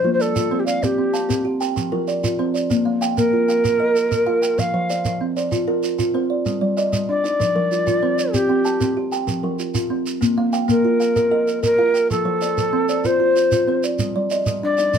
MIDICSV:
0, 0, Header, 1, 5, 480
1, 0, Start_track
1, 0, Key_signature, -2, "major"
1, 0, Tempo, 313643
1, 1267, Time_signature, 12, 3, 24, 8
1, 22930, End_track
2, 0, Start_track
2, 0, Title_t, "Kalimba"
2, 0, Program_c, 0, 108
2, 0, Note_on_c, 0, 53, 72
2, 77, Note_on_c, 0, 58, 62
2, 308, Note_off_c, 0, 53, 0
2, 549, Note_on_c, 0, 65, 79
2, 789, Note_on_c, 0, 72, 66
2, 792, Note_off_c, 0, 58, 0
2, 1028, Note_off_c, 0, 65, 0
2, 1266, Note_on_c, 0, 60, 76
2, 1507, Note_off_c, 0, 72, 0
2, 1736, Note_on_c, 0, 81, 63
2, 1746, Note_off_c, 0, 60, 0
2, 1970, Note_on_c, 0, 60, 85
2, 2456, Note_on_c, 0, 79, 64
2, 2457, Note_off_c, 0, 60, 0
2, 2460, Note_off_c, 0, 81, 0
2, 2696, Note_on_c, 0, 53, 80
2, 2940, Note_off_c, 0, 79, 0
2, 2940, Note_on_c, 0, 70, 71
2, 3179, Note_off_c, 0, 53, 0
2, 3422, Note_on_c, 0, 65, 72
2, 3661, Note_off_c, 0, 70, 0
2, 3663, Note_on_c, 0, 72, 64
2, 3901, Note_off_c, 0, 65, 0
2, 4135, Note_on_c, 0, 58, 80
2, 4381, Note_off_c, 0, 72, 0
2, 4618, Note_off_c, 0, 58, 0
2, 4618, Note_on_c, 0, 79, 69
2, 4856, Note_on_c, 0, 58, 76
2, 5337, Note_off_c, 0, 58, 0
2, 5338, Note_off_c, 0, 79, 0
2, 5341, Note_on_c, 0, 77, 59
2, 5571, Note_on_c, 0, 70, 74
2, 5812, Note_on_c, 0, 75, 67
2, 6054, Note_off_c, 0, 70, 0
2, 6059, Note_off_c, 0, 77, 0
2, 6292, Note_on_c, 0, 70, 83
2, 6526, Note_on_c, 0, 77, 73
2, 6533, Note_off_c, 0, 75, 0
2, 6773, Note_off_c, 0, 70, 0
2, 7008, Note_on_c, 0, 53, 82
2, 7250, Note_off_c, 0, 77, 0
2, 7491, Note_off_c, 0, 53, 0
2, 7500, Note_on_c, 0, 74, 67
2, 7735, Note_on_c, 0, 53, 81
2, 8213, Note_off_c, 0, 53, 0
2, 8213, Note_on_c, 0, 72, 63
2, 8215, Note_off_c, 0, 74, 0
2, 8442, Note_on_c, 0, 65, 79
2, 8685, Note_on_c, 0, 70, 72
2, 8926, Note_off_c, 0, 65, 0
2, 8931, Note_off_c, 0, 72, 0
2, 9159, Note_on_c, 0, 65, 77
2, 9406, Note_off_c, 0, 70, 0
2, 9407, Note_on_c, 0, 72, 71
2, 9644, Note_off_c, 0, 65, 0
2, 9884, Note_on_c, 0, 55, 84
2, 10127, Note_off_c, 0, 72, 0
2, 10363, Note_on_c, 0, 75, 64
2, 10365, Note_off_c, 0, 55, 0
2, 10597, Note_on_c, 0, 55, 83
2, 11078, Note_on_c, 0, 74, 62
2, 11081, Note_off_c, 0, 55, 0
2, 11084, Note_off_c, 0, 75, 0
2, 11319, Note_on_c, 0, 53, 89
2, 11559, Note_on_c, 0, 70, 71
2, 11561, Note_off_c, 0, 74, 0
2, 11802, Note_off_c, 0, 53, 0
2, 12042, Note_on_c, 0, 65, 80
2, 12281, Note_off_c, 0, 70, 0
2, 12282, Note_on_c, 0, 72, 69
2, 12523, Note_off_c, 0, 65, 0
2, 12764, Note_on_c, 0, 60, 74
2, 13003, Note_off_c, 0, 72, 0
2, 13238, Note_on_c, 0, 81, 66
2, 13244, Note_off_c, 0, 60, 0
2, 13474, Note_on_c, 0, 60, 86
2, 13958, Note_off_c, 0, 60, 0
2, 13958, Note_on_c, 0, 79, 65
2, 13960, Note_off_c, 0, 81, 0
2, 14189, Note_on_c, 0, 53, 83
2, 14434, Note_on_c, 0, 70, 60
2, 14441, Note_off_c, 0, 79, 0
2, 14676, Note_off_c, 0, 53, 0
2, 14913, Note_on_c, 0, 65, 74
2, 15159, Note_off_c, 0, 70, 0
2, 15398, Note_off_c, 0, 65, 0
2, 15624, Note_on_c, 0, 58, 79
2, 16112, Note_on_c, 0, 79, 65
2, 16115, Note_off_c, 0, 58, 0
2, 16346, Note_on_c, 0, 58, 86
2, 16834, Note_on_c, 0, 77, 61
2, 16836, Note_off_c, 0, 58, 0
2, 16839, Note_off_c, 0, 79, 0
2, 17083, Note_on_c, 0, 70, 85
2, 17316, Note_on_c, 0, 75, 69
2, 17561, Note_off_c, 0, 77, 0
2, 17565, Note_off_c, 0, 70, 0
2, 17796, Note_on_c, 0, 70, 80
2, 18035, Note_on_c, 0, 77, 66
2, 18043, Note_off_c, 0, 75, 0
2, 18282, Note_off_c, 0, 70, 0
2, 18526, Note_on_c, 0, 53, 86
2, 18763, Note_off_c, 0, 77, 0
2, 19008, Note_off_c, 0, 53, 0
2, 19008, Note_on_c, 0, 74, 66
2, 19243, Note_on_c, 0, 53, 84
2, 19728, Note_off_c, 0, 53, 0
2, 19728, Note_on_c, 0, 72, 70
2, 19731, Note_off_c, 0, 74, 0
2, 19967, Note_on_c, 0, 65, 81
2, 20451, Note_off_c, 0, 65, 0
2, 20453, Note_off_c, 0, 72, 0
2, 20699, Note_on_c, 0, 65, 80
2, 20941, Note_on_c, 0, 72, 70
2, 21179, Note_off_c, 0, 65, 0
2, 21417, Note_on_c, 0, 55, 80
2, 21661, Note_off_c, 0, 72, 0
2, 21900, Note_off_c, 0, 55, 0
2, 21904, Note_on_c, 0, 75, 64
2, 22142, Note_on_c, 0, 55, 83
2, 22622, Note_on_c, 0, 74, 63
2, 22624, Note_off_c, 0, 55, 0
2, 22625, Note_off_c, 0, 75, 0
2, 22868, Note_on_c, 0, 53, 90
2, 22930, Note_off_c, 0, 53, 0
2, 22930, Note_off_c, 0, 74, 0
2, 22930, End_track
3, 0, Start_track
3, 0, Title_t, "Native American-style wooden flute"
3, 0, Program_c, 1, 77
3, 0, Note_on_c, 1, 72, 98
3, 195, Note_off_c, 1, 72, 0
3, 204, Note_on_c, 1, 72, 87
3, 326, Note_on_c, 1, 69, 89
3, 349, Note_off_c, 1, 72, 0
3, 913, Note_on_c, 1, 67, 76
3, 936, Note_off_c, 1, 69, 0
3, 1003, Note_off_c, 1, 67, 0
3, 1012, Note_on_c, 1, 77, 77
3, 1276, Note_on_c, 1, 67, 78
3, 1299, Note_off_c, 1, 77, 0
3, 2230, Note_off_c, 1, 67, 0
3, 4859, Note_on_c, 1, 70, 107
3, 7024, Note_on_c, 1, 77, 91
3, 7047, Note_off_c, 1, 70, 0
3, 7977, Note_off_c, 1, 77, 0
3, 10860, Note_on_c, 1, 74, 106
3, 12756, Note_on_c, 1, 67, 95
3, 12779, Note_off_c, 1, 74, 0
3, 13719, Note_off_c, 1, 67, 0
3, 16377, Note_on_c, 1, 70, 88
3, 17752, Note_off_c, 1, 70, 0
3, 17815, Note_on_c, 1, 70, 102
3, 18483, Note_off_c, 1, 70, 0
3, 18534, Note_on_c, 1, 69, 103
3, 19984, Note_on_c, 1, 72, 88
3, 20007, Note_off_c, 1, 69, 0
3, 21183, Note_off_c, 1, 72, 0
3, 22411, Note_on_c, 1, 74, 101
3, 22930, Note_off_c, 1, 74, 0
3, 22930, End_track
4, 0, Start_track
4, 0, Title_t, "Kalimba"
4, 0, Program_c, 2, 108
4, 0, Note_on_c, 2, 75, 60
4, 65, Note_on_c, 2, 65, 72
4, 66, Note_on_c, 2, 53, 78
4, 299, Note_on_c, 2, 74, 59
4, 306, Note_off_c, 2, 75, 0
4, 547, Note_off_c, 2, 53, 0
4, 781, Note_on_c, 2, 60, 77
4, 786, Note_off_c, 2, 65, 0
4, 1001, Note_off_c, 2, 74, 0
4, 1020, Note_on_c, 2, 74, 62
4, 1264, Note_off_c, 2, 60, 0
4, 1502, Note_on_c, 2, 60, 72
4, 1739, Note_on_c, 2, 77, 64
4, 1742, Note_off_c, 2, 74, 0
4, 1984, Note_off_c, 2, 60, 0
4, 2216, Note_on_c, 2, 67, 78
4, 2457, Note_on_c, 2, 81, 58
4, 2461, Note_off_c, 2, 77, 0
4, 2700, Note_off_c, 2, 67, 0
4, 2943, Note_on_c, 2, 65, 67
4, 2944, Note_on_c, 2, 53, 80
4, 3178, Note_on_c, 2, 74, 64
4, 3180, Note_off_c, 2, 81, 0
4, 3423, Note_off_c, 2, 53, 0
4, 3658, Note_on_c, 2, 60, 82
4, 3662, Note_off_c, 2, 65, 0
4, 3869, Note_off_c, 2, 74, 0
4, 3887, Note_on_c, 2, 74, 60
4, 4140, Note_off_c, 2, 60, 0
4, 4366, Note_on_c, 2, 77, 62
4, 4368, Note_on_c, 2, 58, 81
4, 4589, Note_off_c, 2, 77, 0
4, 4607, Note_on_c, 2, 77, 63
4, 4613, Note_off_c, 2, 74, 0
4, 4854, Note_off_c, 2, 58, 0
4, 5098, Note_on_c, 2, 65, 78
4, 5332, Note_on_c, 2, 79, 66
4, 5333, Note_off_c, 2, 77, 0
4, 5578, Note_off_c, 2, 65, 0
4, 5808, Note_on_c, 2, 70, 84
4, 6027, Note_off_c, 2, 70, 0
4, 6046, Note_on_c, 2, 70, 64
4, 6054, Note_off_c, 2, 79, 0
4, 6533, Note_on_c, 2, 65, 77
4, 6768, Note_on_c, 2, 79, 73
4, 6770, Note_off_c, 2, 70, 0
4, 7014, Note_off_c, 2, 65, 0
4, 7250, Note_on_c, 2, 72, 68
4, 7253, Note_on_c, 2, 53, 81
4, 7477, Note_off_c, 2, 72, 0
4, 7490, Note_off_c, 2, 79, 0
4, 7495, Note_on_c, 2, 72, 63
4, 7733, Note_off_c, 2, 53, 0
4, 7970, Note_on_c, 2, 60, 74
4, 8211, Note_on_c, 2, 74, 64
4, 8213, Note_off_c, 2, 72, 0
4, 8450, Note_off_c, 2, 60, 0
4, 8689, Note_on_c, 2, 65, 88
4, 8906, Note_off_c, 2, 65, 0
4, 8925, Note_on_c, 2, 65, 67
4, 8930, Note_off_c, 2, 74, 0
4, 9401, Note_on_c, 2, 60, 77
4, 9640, Note_on_c, 2, 74, 67
4, 9646, Note_off_c, 2, 65, 0
4, 9884, Note_off_c, 2, 60, 0
4, 10103, Note_off_c, 2, 74, 0
4, 10122, Note_on_c, 2, 74, 62
4, 10124, Note_on_c, 2, 55, 78
4, 10349, Note_off_c, 2, 74, 0
4, 10368, Note_on_c, 2, 74, 71
4, 10605, Note_off_c, 2, 55, 0
4, 10849, Note_on_c, 2, 62, 76
4, 11084, Note_on_c, 2, 63, 66
4, 11086, Note_off_c, 2, 74, 0
4, 11327, Note_off_c, 2, 62, 0
4, 11565, Note_on_c, 2, 53, 86
4, 11804, Note_off_c, 2, 63, 0
4, 11811, Note_on_c, 2, 65, 64
4, 12045, Note_off_c, 2, 53, 0
4, 12283, Note_on_c, 2, 60, 77
4, 12520, Note_on_c, 2, 74, 63
4, 12527, Note_off_c, 2, 65, 0
4, 12763, Note_off_c, 2, 60, 0
4, 12996, Note_on_c, 2, 79, 66
4, 12999, Note_on_c, 2, 60, 79
4, 13226, Note_off_c, 2, 79, 0
4, 13242, Note_off_c, 2, 74, 0
4, 13244, Note_on_c, 2, 79, 67
4, 13481, Note_off_c, 2, 60, 0
4, 13726, Note_on_c, 2, 67, 81
4, 13964, Note_off_c, 2, 79, 0
4, 13968, Note_on_c, 2, 81, 59
4, 14205, Note_off_c, 2, 67, 0
4, 14443, Note_on_c, 2, 53, 91
4, 14679, Note_on_c, 2, 65, 57
4, 14686, Note_off_c, 2, 81, 0
4, 14923, Note_off_c, 2, 53, 0
4, 15153, Note_on_c, 2, 60, 82
4, 15402, Note_off_c, 2, 65, 0
4, 15639, Note_off_c, 2, 60, 0
4, 15879, Note_on_c, 2, 77, 69
4, 15881, Note_on_c, 2, 58, 82
4, 16096, Note_off_c, 2, 77, 0
4, 16115, Note_on_c, 2, 77, 71
4, 16363, Note_off_c, 2, 58, 0
4, 16598, Note_on_c, 2, 65, 79
4, 16837, Note_on_c, 2, 79, 56
4, 16840, Note_off_c, 2, 77, 0
4, 17082, Note_off_c, 2, 65, 0
4, 17313, Note_on_c, 2, 70, 88
4, 17538, Note_off_c, 2, 70, 0
4, 17557, Note_on_c, 2, 70, 62
4, 17562, Note_off_c, 2, 79, 0
4, 18033, Note_on_c, 2, 65, 84
4, 18272, Note_on_c, 2, 79, 68
4, 18283, Note_off_c, 2, 70, 0
4, 18522, Note_off_c, 2, 65, 0
4, 18750, Note_on_c, 2, 72, 63
4, 18751, Note_on_c, 2, 53, 84
4, 18981, Note_off_c, 2, 72, 0
4, 18999, Note_on_c, 2, 72, 59
4, 19002, Note_off_c, 2, 79, 0
4, 19241, Note_off_c, 2, 53, 0
4, 19479, Note_on_c, 2, 60, 83
4, 19725, Note_on_c, 2, 74, 62
4, 19727, Note_off_c, 2, 72, 0
4, 19967, Note_off_c, 2, 60, 0
4, 20200, Note_on_c, 2, 65, 81
4, 20428, Note_off_c, 2, 65, 0
4, 20446, Note_on_c, 2, 65, 66
4, 20451, Note_off_c, 2, 74, 0
4, 20926, Note_on_c, 2, 60, 75
4, 21173, Note_off_c, 2, 65, 0
4, 21178, Note_on_c, 2, 74, 65
4, 21413, Note_off_c, 2, 60, 0
4, 21647, Note_off_c, 2, 74, 0
4, 21665, Note_on_c, 2, 74, 63
4, 21667, Note_on_c, 2, 55, 80
4, 21891, Note_off_c, 2, 74, 0
4, 21910, Note_on_c, 2, 74, 71
4, 22145, Note_off_c, 2, 55, 0
4, 22395, Note_on_c, 2, 62, 89
4, 22628, Note_off_c, 2, 74, 0
4, 22632, Note_on_c, 2, 63, 63
4, 22871, Note_off_c, 2, 62, 0
4, 22930, Note_off_c, 2, 63, 0
4, 22930, End_track
5, 0, Start_track
5, 0, Title_t, "Shekere"
5, 314, Note_on_c, 9, 82, 53
5, 468, Note_off_c, 9, 82, 0
5, 552, Note_on_c, 9, 82, 85
5, 705, Note_off_c, 9, 82, 0
5, 1033, Note_on_c, 9, 82, 68
5, 1186, Note_off_c, 9, 82, 0
5, 1272, Note_on_c, 9, 82, 67
5, 1425, Note_off_c, 9, 82, 0
5, 1750, Note_on_c, 9, 82, 59
5, 1903, Note_off_c, 9, 82, 0
5, 1992, Note_on_c, 9, 82, 76
5, 2145, Note_off_c, 9, 82, 0
5, 2467, Note_on_c, 9, 82, 54
5, 2620, Note_off_c, 9, 82, 0
5, 2706, Note_on_c, 9, 82, 69
5, 2859, Note_off_c, 9, 82, 0
5, 3184, Note_on_c, 9, 82, 45
5, 3337, Note_off_c, 9, 82, 0
5, 3427, Note_on_c, 9, 82, 78
5, 3581, Note_off_c, 9, 82, 0
5, 3908, Note_on_c, 9, 82, 57
5, 4061, Note_off_c, 9, 82, 0
5, 4141, Note_on_c, 9, 82, 76
5, 4294, Note_off_c, 9, 82, 0
5, 4621, Note_on_c, 9, 82, 69
5, 4774, Note_off_c, 9, 82, 0
5, 4861, Note_on_c, 9, 82, 74
5, 5014, Note_off_c, 9, 82, 0
5, 5341, Note_on_c, 9, 82, 58
5, 5494, Note_off_c, 9, 82, 0
5, 5581, Note_on_c, 9, 82, 78
5, 5734, Note_off_c, 9, 82, 0
5, 6063, Note_on_c, 9, 82, 58
5, 6216, Note_off_c, 9, 82, 0
5, 6299, Note_on_c, 9, 82, 82
5, 6452, Note_off_c, 9, 82, 0
5, 6776, Note_on_c, 9, 82, 67
5, 6929, Note_off_c, 9, 82, 0
5, 7017, Note_on_c, 9, 82, 77
5, 7170, Note_off_c, 9, 82, 0
5, 7499, Note_on_c, 9, 82, 58
5, 7652, Note_off_c, 9, 82, 0
5, 7729, Note_on_c, 9, 82, 71
5, 7882, Note_off_c, 9, 82, 0
5, 8222, Note_on_c, 9, 82, 51
5, 8375, Note_off_c, 9, 82, 0
5, 8445, Note_on_c, 9, 82, 64
5, 8598, Note_off_c, 9, 82, 0
5, 8927, Note_on_c, 9, 82, 51
5, 9080, Note_off_c, 9, 82, 0
5, 9168, Note_on_c, 9, 82, 77
5, 9321, Note_off_c, 9, 82, 0
5, 9883, Note_on_c, 9, 82, 59
5, 10036, Note_off_c, 9, 82, 0
5, 10372, Note_on_c, 9, 82, 54
5, 10525, Note_off_c, 9, 82, 0
5, 10605, Note_on_c, 9, 82, 74
5, 10758, Note_off_c, 9, 82, 0
5, 11093, Note_on_c, 9, 82, 49
5, 11246, Note_off_c, 9, 82, 0
5, 11336, Note_on_c, 9, 82, 68
5, 11489, Note_off_c, 9, 82, 0
5, 11812, Note_on_c, 9, 82, 57
5, 11965, Note_off_c, 9, 82, 0
5, 12047, Note_on_c, 9, 82, 78
5, 12200, Note_off_c, 9, 82, 0
5, 12529, Note_on_c, 9, 82, 68
5, 12682, Note_off_c, 9, 82, 0
5, 12764, Note_on_c, 9, 82, 80
5, 12917, Note_off_c, 9, 82, 0
5, 13241, Note_on_c, 9, 82, 63
5, 13394, Note_off_c, 9, 82, 0
5, 13482, Note_on_c, 9, 82, 75
5, 13635, Note_off_c, 9, 82, 0
5, 13964, Note_on_c, 9, 82, 55
5, 14117, Note_off_c, 9, 82, 0
5, 14200, Note_on_c, 9, 82, 73
5, 14353, Note_off_c, 9, 82, 0
5, 14680, Note_on_c, 9, 82, 49
5, 14833, Note_off_c, 9, 82, 0
5, 14917, Note_on_c, 9, 82, 85
5, 15070, Note_off_c, 9, 82, 0
5, 15403, Note_on_c, 9, 82, 62
5, 15556, Note_off_c, 9, 82, 0
5, 15643, Note_on_c, 9, 82, 74
5, 15796, Note_off_c, 9, 82, 0
5, 16119, Note_on_c, 9, 82, 61
5, 16272, Note_off_c, 9, 82, 0
5, 16360, Note_on_c, 9, 82, 70
5, 16513, Note_off_c, 9, 82, 0
5, 16845, Note_on_c, 9, 82, 50
5, 16998, Note_off_c, 9, 82, 0
5, 17080, Note_on_c, 9, 82, 67
5, 17233, Note_off_c, 9, 82, 0
5, 17567, Note_on_c, 9, 82, 50
5, 17721, Note_off_c, 9, 82, 0
5, 17804, Note_on_c, 9, 82, 75
5, 17957, Note_off_c, 9, 82, 0
5, 18287, Note_on_c, 9, 82, 60
5, 18440, Note_off_c, 9, 82, 0
5, 18528, Note_on_c, 9, 82, 67
5, 18681, Note_off_c, 9, 82, 0
5, 19000, Note_on_c, 9, 82, 59
5, 19153, Note_off_c, 9, 82, 0
5, 19248, Note_on_c, 9, 82, 77
5, 19402, Note_off_c, 9, 82, 0
5, 19725, Note_on_c, 9, 82, 58
5, 19878, Note_off_c, 9, 82, 0
5, 19964, Note_on_c, 9, 82, 67
5, 20117, Note_off_c, 9, 82, 0
5, 20450, Note_on_c, 9, 82, 55
5, 20603, Note_off_c, 9, 82, 0
5, 20688, Note_on_c, 9, 82, 88
5, 20841, Note_off_c, 9, 82, 0
5, 21172, Note_on_c, 9, 82, 68
5, 21325, Note_off_c, 9, 82, 0
5, 21409, Note_on_c, 9, 82, 83
5, 21562, Note_off_c, 9, 82, 0
5, 21894, Note_on_c, 9, 82, 70
5, 22047, Note_off_c, 9, 82, 0
5, 22134, Note_on_c, 9, 82, 91
5, 22287, Note_off_c, 9, 82, 0
5, 22615, Note_on_c, 9, 82, 61
5, 22768, Note_off_c, 9, 82, 0
5, 22859, Note_on_c, 9, 82, 83
5, 22930, Note_off_c, 9, 82, 0
5, 22930, End_track
0, 0, End_of_file